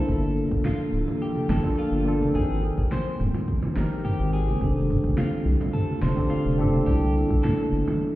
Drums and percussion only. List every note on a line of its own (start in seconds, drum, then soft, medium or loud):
0.09 kick loud
0.09 cabasa soft
0.37 cabasa medium
0.51 kick loud
0.51 cabasa soft
0.65 snare medium
0.65 mid tom medium
0.65 high conga medium
0.65 cabasa soft
0.94 cabasa medium
1.08 low conga medium
1.08 cabasa soft
1.22 cabasa soft
1.36 high conga medium
1.49 snare medium
1.49 mid tom medium
1.49 low conga medium
1.49 cabasa medium
1.65 kick loud
1.65 cabasa soft
1.79 cabasa soft
2.07 cabasa medium
2.21 high conga medium
2.21 cabasa soft
2.35 kick loud
2.35 mid tom medium
2.35 cabasa soft
2.64 cabasa medium
2.78 kick loud
2.78 cabasa soft
2.92 snare medium
2.92 high conga medium
2.92 cabasa soft
3.20 mid tom medium
3.20 cabasa medium
3.34 low conga medium
3.34 cabasa soft
3.48 kick loud
3.48 cabasa soft
3.62 high conga medium
3.62 low conga medium
3.76 snare medium
3.76 low conga medium
3.76 cabasa medium
3.92 cabasa soft
4.05 mid tom medium
4.05 cabasa soft
4.35 cabasa medium
4.48 high conga medium
4.48 cabasa soft
4.61 kick loud
4.61 cabasa soft
4.90 mid tom medium
4.90 cabasa medium
5.04 kick medium
5.04 cabasa soft
5.17 snare medium
5.17 high conga medium
5.17 cabasa soft
5.47 cabasa medium
5.61 low conga medium
5.61 cabasa soft
5.75 mid tom medium
5.75 cabasa soft
5.90 high conga medium
6.02 snare medium
6.02 low conga medium
6.02 cabasa medium
6.17 kick medium
6.17 cabasa soft
6.32 cabasa soft
6.60 mid tom medium
6.60 cabasa medium
6.73 high conga medium
6.73 cabasa soft
6.87 kick loud
6.87 cabasa soft
7.17 cabasa medium
7.30 kick loud
7.30 cabasa soft
7.44 snare medium
7.44 mid tom medium
7.44 high conga medium
7.74 cabasa medium
7.87 low conga loud
7.87 cabasa soft
8.02 cabasa soft